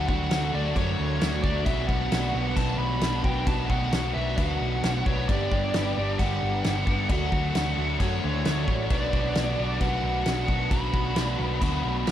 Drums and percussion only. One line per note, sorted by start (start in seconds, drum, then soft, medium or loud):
0.09 kick medium
0.31 snare loud
0.31 crash medium
0.76 kick medium
0.76 crash medium
1.21 snare loud
1.21 crash medium
1.44 kick medium
1.66 kick loud
1.66 crash medium
1.89 kick medium
2.12 snare loud
2.12 crash medium
2.57 kick medium
2.57 crash medium
3.01 snare loud
3.01 crash medium
3.24 kick medium
3.47 kick loud
3.47 crash medium
3.70 kick medium
3.92 snare loud
3.92 crash medium
4.38 kick medium
4.38 crash medium
4.83 snare loud
4.83 crash medium
5.06 kick loud
5.29 kick loud
5.29 crash medium
5.52 kick medium
5.74 snare loud
5.74 crash medium
6.19 kick medium
6.19 crash medium
6.64 snare loud
6.64 crash medium
6.87 kick medium
7.10 kick loud
7.10 crash medium
7.32 kick medium
7.55 snare loud
7.55 crash medium
8.00 kick medium
8.00 crash medium
8.45 snare loud
8.45 crash medium
8.68 kick medium
8.90 kick loud
8.90 crash medium
9.13 kick loud
9.35 snare loud
9.35 crash medium
9.81 kick medium
9.81 crash medium
10.26 snare loud
10.26 crash medium
10.48 kick medium
10.71 kick loud
10.71 crash medium
10.94 kick medium
11.16 snare loud
11.16 crash medium
11.62 kick medium
11.62 crash medium
12.07 snare loud
12.07 crash medium